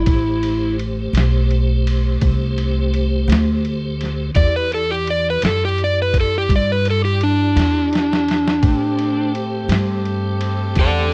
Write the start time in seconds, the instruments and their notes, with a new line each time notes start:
Already playing: electric slide guitar E4
0.05 upright bass A1, tonewheel organ A3 G4 C5, kick, ride
0.43 ride
0.79 ride
1.13 upright bass B1, ride
1.17 snare
1.51 ride
1.87 ride
2.21 upright bass C2, kick, ride
2.58 ride
2.94 ride
3.28 upright bass D2, ride
3.32 snare
3.65 ride
4.01 snare, ride
4.35 upright bass E2, tonewheel organ E4 G4 D5, electric slide guitar D5, kick, ride
4.56 electric slide guitar B4
4.72 electric slide guitar A4, ride
4.91 electric slide guitar G4
5.07 electric slide guitar D5, ride
5.30 electric slide guitar B4
5.42 upright bass F#2, snare, ride
5.46 electric slide guitar A4
5.65 electric slide guitar G4
5.78 ride
5.84 electric slide guitar D5
6.02 electric slide guitar B4
6.14 kick, ride
6.20 electric slide guitar A4
6.38 electric slide guitar G4
6.49 upright bass G2, kick, ride
6.56 electric slide guitar D5
6.72 electric slide guitar B4
6.85 ride
6.90 electric slide guitar A4
7.05 electric slide guitar G4
7.21 electric slide guitar D4, ride
7.56 upright bass E2, snare, ride
7.93 snare, ride
8.13 snare
8.28 snare, ride
8.48 snare
8.61 upright bass A2, horn section A3 C4 G4, tonewheel organ A3 G4 C5, kick, ride
8.99 ride
9.35 ride
9.68 upright bass G2, snare, ride
10.05 ride
10.41 ride
10.75 upright bass E2, electric slide guitar A4, kick, ride
10.81 electric slide guitar D5